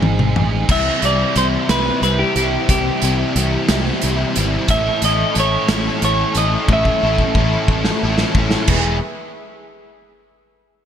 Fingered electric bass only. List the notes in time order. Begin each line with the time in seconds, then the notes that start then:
0.02 G#1
0.36 A1
0.69 C2
1.03 C2
1.36 C2
1.69 C2
2.02 C2
2.36 C2
2.69 C2
3.02 C2
3.36 C2
3.69 C2
4.03 C2
4.37 G#1
4.68 A1
5.02 A1
5.36 A1
5.69 A1
6.02 A1
6.35 A1
6.68 A1
7.03 A1
7.35 A1
7.68 A1
8.03 A1
8.35 A1
8.68 E1